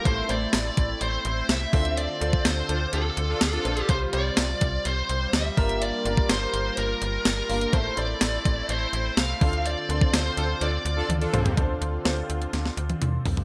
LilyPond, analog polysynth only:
\new Staff \with { instrumentName = "Analog polysynth" } { \time 4/4 \key d \minor \tempo 4 = 125 r1 | r4. <d' f' a'>16 r16 <d' f' a'>16 r8 <d' f' a'>16 r16 <d' f' a'>8. | r1 | r1 |
r1 | r4. <d' f' a'>16 r16 <d' f' a'>16 r8 <d' f' a'>16 r16 <d' f' a'>8. | r1 | }